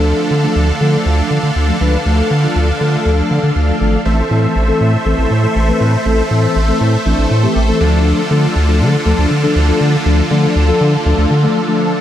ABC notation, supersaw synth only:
X:1
M:4/4
L:1/8
Q:1/4=120
K:Am
V:1 name="Supersaw synth"
[D,DAf]8- | [D,DAf]8 | [A,Ace]8- | [A,Ace]6- [A,Ace] [D,DF]- |
[D,DF]8- | [D,DF]8 |]